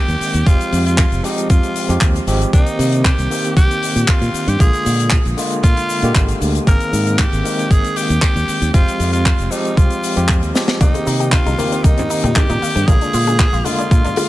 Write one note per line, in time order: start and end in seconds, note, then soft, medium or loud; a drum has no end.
0.00 0.43 D#3 medium
0.00 0.44 G#3 medium
0.00 0.43 A#3 medium
0.00 0.44 C4 medium
0.00 0.48 G4 loud
0.08 0.16 D#2 loud
0.08 closed hi-hat soft
0.08 shaker soft
0.21 muted fingered electric bass stroke soft
0.21 open hi-hat loud
0.21 shaker medium
0.34 0.42 D#2 medium
0.34 closed hi-hat medium
0.34 shaker medium
0.46 0.55 F1 medium
0.46 1.21 F3 medium
0.46 1.21 G#3 medium
0.46 1.21 C4 medium
0.46 0.85 F4 loud
0.46 1.22 G4 medium
0.46 kick loud
0.46 closed hi-hat medium
0.46 shaker medium
0.61 closed hi-hat soft
0.61 shaker soft
0.72 1.04 F2 medium
0.72 open hi-hat loud
0.72 shaker medium
0.86 1.25 F4 medium
0.86 closed hi-hat medium
0.86 shaker medium
0.98 kick loud
0.98 clap loud
0.98 closed hi-hat medium
0.98 shaker medium
1.12 1.19 F1 medium
1.12 closed hi-hat soft
1.12 shaker soft
1.23 1.86 F3 medium
1.23 1.86 G#3 medium
1.23 1.87 C4 medium
1.23 1.49 D#4 medium
1.23 1.87 G4 medium
1.23 open hi-hat loud
1.23 shaker medium
1.38 closed hi-hat medium
1.38 shaker medium
1.50 1.58 F2 medium
1.50 2.24 F4 medium
1.50 kick loud
1.50 closed hi-hat medium
1.50 shaker medium
1.63 closed hi-hat soft
1.63 shaker soft
1.76 open hi-hat loud
1.76 shaker medium
1.89 1.97 F2 loud
1.89 2.24 F3 medium
1.89 2.24 G#3 medium
1.89 2.25 C4 medium
1.89 2.25 G4 medium
1.89 closed hi-hat medium
1.89 shaker medium
2.01 2.18 D#2 medium
2.01 kick loud
2.01 clap loud
2.01 closed hi-hat medium
2.01 shaker medium
2.16 closed hi-hat soft
2.16 shaker soft
2.27 2.44 G#1 loud
2.27 2.50 F3 medium
2.27 2.50 G#3 medium
2.27 2.50 C4 medium
2.27 2.51 G4 loud
2.27 open hi-hat loud
2.27 shaker medium
2.42 closed hi-hat medium
2.42 shaker soft
2.53 2.62 C2 loud
2.53 3.28 A#3 medium
2.53 3.28 C4 medium
2.53 3.06 D#4 loud
2.53 3.28 G4 medium
2.53 kick loud
2.53 closed hi-hat medium
2.53 shaker medium
2.66 closed hi-hat soft
2.66 shaker soft
2.79 3.10 C3 medium
2.79 open hi-hat loud
2.79 shaker medium
2.92 closed hi-hat medium
2.92 shaker soft
3.05 3.56 G4 loud
3.05 kick loud
3.05 clap loud
3.05 closed hi-hat medium
3.05 shaker medium
3.18 3.26 C2 medium
3.18 closed hi-hat soft
3.18 shaker soft
3.30 4.57 D#3 medium
3.30 4.57 A#3 medium
3.30 4.57 C4 medium
3.30 4.58 G4 medium
3.30 open hi-hat loud
3.30 shaker medium
3.45 closed hi-hat medium
3.45 shaker soft
3.57 3.65 C2 medium
3.57 4.10 G4 loud
3.57 kick loud
3.57 closed hi-hat medium
3.57 shaker medium
3.71 closed hi-hat soft
3.71 shaker soft
3.83 open hi-hat loud
3.83 shaker medium
3.96 4.04 A#2 medium
3.96 closed hi-hat medium
3.96 shaker medium
4.08 4.50 F4 loud
4.08 kick loud
4.08 clap loud
4.08 closed hi-hat medium
4.08 shaker medium
4.21 4.29 A#2 loud
4.21 closed hi-hat soft
4.21 shaker soft
4.34 muted fingered electric bass stroke soft
4.34 open hi-hat loud
4.34 shaker medium
4.47 4.55 G2 loud
4.47 4.60 G4 loud
4.47 closed hi-hat medium
4.47 shaker medium
4.59 4.69 A#1 medium
4.59 5.34 D3 medium
4.59 5.35 G#3 medium
4.59 5.35 A#3 medium
4.59 5.35 F4 medium
4.59 5.34 G#4 loud
4.59 kick loud
4.59 closed hi-hat medium
4.59 shaker medium
4.73 closed hi-hat soft
4.73 shaker soft
4.86 5.17 A#2 medium
4.86 open hi-hat loud
4.86 shaker medium
5.00 closed hi-hat medium
5.00 shaker soft
5.10 kick loud
5.10 clap loud
5.10 closed hi-hat medium
5.10 shaker medium
5.25 5.33 A#1 medium
5.25 closed hi-hat soft
5.25 shaker soft
5.37 6.00 D3 medium
5.37 6.00 G#3 medium
5.37 6.00 A#3 medium
5.37 6.01 F4 loud
5.37 open hi-hat loud
5.37 shaker medium
5.51 closed hi-hat medium
5.51 shaker medium
5.63 5.72 A#2 loud
5.63 6.37 F4 loud
5.63 kick loud
5.63 closed hi-hat medium
5.63 shaker medium
5.77 closed hi-hat medium
5.77 shaker soft
5.90 open hi-hat loud
5.90 shaker medium
6.02 6.11 A#2 loud
6.02 6.64 D3 medium
6.02 6.64 G#3 medium
6.02 6.64 A#3 medium
6.02 6.65 G4 loud
6.02 closed hi-hat medium
6.02 shaker medium
6.15 6.32 G#1 medium
6.15 kick loud
6.15 clap loud
6.15 closed hi-hat medium
6.15 shaker medium
6.28 closed hi-hat soft
6.28 shaker soft
6.41 6.58 D2 loud
6.41 open hi-hat medium
6.41 shaker medium
6.55 closed hi-hat medium
6.55 shaker soft
6.66 6.75 G#1 loud
6.66 7.41 D#3 medium
6.66 7.42 A#3 medium
6.66 7.42 C4 medium
6.66 7.42 G#4 medium
6.66 7.21 A#4 loud
6.66 kick loud
6.66 closed hi-hat medium
6.66 shaker medium
6.80 closed hi-hat soft
6.80 shaker soft
6.93 7.24 G#2 medium
6.93 open hi-hat loud
6.93 shaker medium
7.07 closed hi-hat medium
7.07 shaker soft
7.19 7.72 G4 loud
7.19 kick loud
7.19 clap loud
7.19 closed hi-hat medium
7.19 shaker medium
7.33 7.40 G#1 medium
7.33 closed hi-hat soft
7.33 shaker soft
7.44 8.70 D#3 medium
7.44 8.71 G#3 medium
7.44 8.71 A#3 medium
7.44 8.71 C4 medium
7.44 open hi-hat loud
7.44 shaker medium
7.59 closed hi-hat medium
7.59 shaker soft
7.71 7.79 G#1 medium
7.71 7.98 G#4 loud
7.71 kick loud
7.71 closed hi-hat medium
7.71 shaker medium
7.84 closed hi-hat soft
7.84 shaker soft
7.96 8.73 G4 loud
7.96 open hi-hat loud
7.96 shaker medium
8.10 8.18 D#2 medium
8.10 closed hi-hat medium
8.10 shaker medium
8.22 kick loud
8.22 clap loud
8.22 closed hi-hat medium
8.22 shaker medium
8.36 8.43 D#2 loud
8.36 closed hi-hat soft
8.36 shaker soft
8.48 muted fingered electric bass stroke soft
8.48 open hi-hat loud
8.48 shaker medium
8.62 8.69 D#2 loud
8.62 closed hi-hat medium
8.62 shaker medium
8.73 8.82 F1 medium
8.73 9.48 F3 medium
8.73 9.49 G#3 medium
8.73 9.49 C4 medium
8.73 9.10 F4 loud
8.73 9.49 G4 medium
8.73 kick loud
8.73 closed hi-hat medium
8.73 shaker medium
8.88 closed hi-hat soft
8.88 shaker soft
9.00 9.31 F2 medium
9.00 open hi-hat loud
9.00 shaker medium
9.13 9.53 F4 medium
9.13 closed hi-hat medium
9.13 shaker soft
9.26 kick loud
9.26 clap loud
9.26 closed hi-hat medium
9.26 shaker medium
9.39 9.47 F1 medium
9.39 closed hi-hat soft
9.39 shaker soft
9.51 10.14 F3 medium
9.51 10.14 G#3 medium
9.51 10.14 C4 medium
9.51 9.78 D#4 medium
9.51 10.15 G4 loud
9.51 open hi-hat loud
9.51 shaker loud
9.65 closed hi-hat medium
9.65 shaker soft
9.77 9.86 C2 loud
9.77 10.55 F4 loud
9.77 kick loud
9.77 closed hi-hat medium
9.77 shaker medium
9.90 closed hi-hat soft
9.90 shaker soft
10.04 open hi-hat loud
10.04 shaker medium
10.16 10.42 F2 medium
10.16 10.52 F3 medium
10.16 10.52 G#3 medium
10.16 10.52 C4 medium
10.16 10.52 G4 medium
10.16 closed hi-hat medium
10.16 shaker medium
10.28 kick loud
10.28 clap loud
10.28 closed hi-hat medium
10.28 shaker medium
10.42 10.50 D#2 medium
10.42 closed hi-hat soft
10.42 shaker soft
10.54 10.78 F3 medium
10.54 10.78 G#3 medium
10.54 10.78 C4 medium
10.54 10.78 G4 loud
10.54 snare medium
10.54 open hi-hat loud
10.54 shaker medium
10.68 snare medium
10.68 closed hi-hat medium
10.68 shaker soft
10.80 10.89 C2 medium
10.80 11.55 D#3 medium
10.80 11.55 A#3 medium
10.80 10.94 A#3 loud
10.80 11.56 C4 medium
10.80 11.29 D#4 loud
10.80 11.56 G4 medium
10.80 kick loud
10.80 closed hi-hat medium
10.80 high conga medium
10.80 shaker medium
10.94 11.03 C4 medium
10.94 closed hi-hat soft
10.94 high bongo medium
10.94 shaker soft
11.07 11.38 C3 medium
11.07 11.16 D#4 medium
11.07 open hi-hat loud
11.07 shaker medium
11.20 11.32 G4 medium
11.20 closed hi-hat medium
11.20 shaker medium
11.32 11.45 D#4 medium
11.32 11.85 F4 loud
11.32 kick loud
11.32 clap loud
11.32 closed hi-hat medium
11.32 shaker medium
11.46 11.54 C2 medium
11.46 11.54 D#4 loud
11.46 closed hi-hat soft
11.46 high bongo medium
11.46 shaker soft
11.58 12.84 D#3 medium
11.58 11.71 A#3 loud
11.58 12.85 A#3 medium
11.58 12.85 C4 medium
11.58 12.85 G4 medium
11.58 open hi-hat loud
11.58 high conga medium
11.58 shaker medium
11.72 11.84 C4 medium
11.72 closed hi-hat medium
11.72 shaker medium
11.83 11.93 C2 medium
11.83 11.97 A#3 loud
11.83 12.37 D#4 loud
11.83 kick loud
11.83 closed hi-hat medium
11.83 high bongo medium
11.83 shaker medium
11.98 12.06 C4 medium
11.98 closed hi-hat soft
11.98 low conga medium
11.98 shaker soft
12.10 12.19 D#4 loud
12.10 open hi-hat loud
12.10 shaker medium
12.24 12.31 A#2 medium
12.24 12.35 G4 medium
12.24 closed hi-hat medium
12.24 high conga loud
12.24 shaker medium
12.35 12.48 D#4 medium
12.35 12.88 G4 loud
12.35 kick loud
12.35 clap loud
12.35 closed hi-hat medium
12.35 high bongo medium
12.35 low conga medium
12.35 shaker medium
12.50 12.57 A#2 loud
12.50 12.58 D#4 loud
12.50 closed hi-hat soft
12.50 low conga medium
12.50 shaker soft
12.62 12.75 A#3 loud
12.62 muted fingered electric bass stroke soft
12.62 open hi-hat loud
12.62 shaker medium
12.75 12.83 G2 loud
12.75 12.87 C4 medium
12.75 closed hi-hat medium
12.75 high bongo medium
12.75 shaker medium
12.87 12.96 A#1 loud
12.87 13.62 D3 medium
12.87 13.62 G#3 medium
12.87 13.01 A#3 loud
12.87 13.63 A#3 medium
12.87 13.63 F4 medium
12.87 13.66 G#4 loud
12.87 kick loud
12.87 closed hi-hat medium
12.87 high conga medium
12.87 shaker medium
13.01 13.10 D4 medium
13.01 closed hi-hat medium
13.01 shaker soft
13.13 13.45 A#2 medium
13.13 13.23 F4 loud
13.13 open hi-hat loud
13.13 shaker medium
13.27 13.39 G#4 medium
13.27 closed hi-hat medium
13.27 high bongo medium
13.27 shaker medium
13.39 13.52 F4 medium
13.39 kick loud
13.39 clap loud
13.39 closed hi-hat medium
13.39 shaker medium
13.53 13.61 A#1 medium
13.53 13.61 F4 loud
13.53 closed hi-hat soft
13.53 shaker soft
13.64 14.27 D3 medium
13.64 14.28 G#3 medium
13.64 13.78 A#3 loud
13.64 14.28 A#3 medium
13.64 14.29 F4 loud
13.64 14.28 F4 loud
13.64 open hi-hat loud
13.64 high bongo medium
13.64 high conga medium
13.64 shaker medium
13.78 13.91 D4 medium
13.78 closed hi-hat medium
13.78 shaker medium
13.91 14.00 A#2 medium
13.91 14.04 A#3 loud
13.91 kick loud
13.91 closed hi-hat medium
13.91 shaker medium
14.05 14.13 D4 medium
14.05 closed hi-hat soft
14.05 low conga medium
14.05 shaker soft
14.16 14.26 F4 loud
14.16 open hi-hat loud
14.16 high bongo medium
14.16 shaker medium